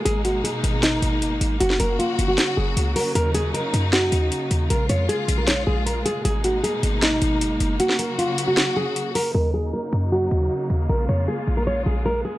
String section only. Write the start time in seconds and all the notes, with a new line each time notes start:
Already playing: G#3 A#3
0.05 B2 D#4
1.60 C#3 F#3 F#4
3.15 D#4
4.70 G#3 F4
6.25 B2 A#3 D#4
7.80 C#3 F#3 F#4
9.35 C#3 F#3 A#3 D#4
10.90 G#3 F4